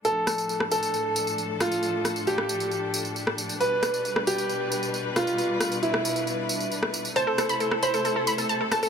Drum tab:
TB |x-xxx-xxx-xxx-xx|x-xxx-xxx-xxx-xx|x-xxx-xxx-xxx-xx|x-xxx-xxx-xxx-xx|
SD |--r--r--------r-|--r--r-------r--|--r--r--------r-|--r--r-------r--|

TB |x-xxx-xxx-xxx-xx|
SD |--r--r--------r-|